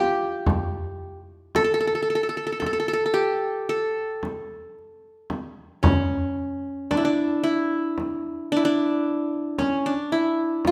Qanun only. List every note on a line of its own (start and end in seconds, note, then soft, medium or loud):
0.00 0.37 D4 medium
0.00 0.74 F4 medium
0.00 1.19 G4 medium
1.56 1.64 A4 loud
1.64 1.73 A4 medium
1.74 1.80 A4 medium
1.80 1.87 A4 medium
1.87 1.95 A4 medium
1.95 2.02 A4 medium
2.02 2.10 A4 medium
2.10 2.15 A4 soft
2.15 2.23 A4 medium
2.23 2.29 A4 medium
2.29 2.37 A4 medium
2.37 2.46 A4 medium
2.47 2.52 A4 medium
2.52 2.59 A4 medium
2.60 2.66 A4 medium
2.66 2.73 A4 medium
2.73 2.79 A4 medium
2.80 2.88 A4 medium
2.88 2.93 A4 medium
2.93 3.05 A4 medium
3.06 3.69 A4 medium
3.14 4.39 G4 medium
3.69 5.26 A4 medium
5.83 6.97 C#4 medium
6.91 7.04 D4 medium
6.97 7.43 E4 medium
7.05 8.52 D4 medium
7.43 8.56 E4 medium
8.52 8.64 D4 medium
8.57 9.96 E4 medium
8.65 9.65 D4 medium
9.59 9.92 C#4 medium
9.86 10.71 D4 medium
10.12 10.71 E4 medium
10.67 10.71 F4 medium